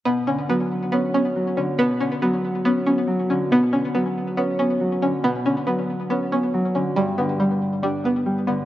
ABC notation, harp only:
X:1
M:4/4
L:1/8
Q:1/4=139
K:Bm
V:1 name="Harp" clef=bass
B,, D, F,2 C B, F, D, | B,, D, F,2 C B, F, D, | B,, D, F,2 C B, F, D, | B,, D, F,2 C B, F, D, |
G,, D, G,2 D B, G, D, |]